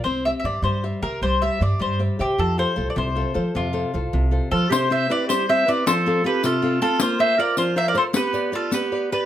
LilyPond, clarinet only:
\new Staff \with { instrumentName = "Clarinet" } { \time 6/8 \key f \major \tempo 4. = 103 r2. | r2. | r2. | r2 r8 f'8 |
\key c \major g'8 c''8 b'8 g'8 c''8 b'8 | a'4 g'8 f'4 f'8 | f'8 c''8 bes'8 f'8 c''16 bes'16 a'8 | g'4 f'8 g'4 g'8 | }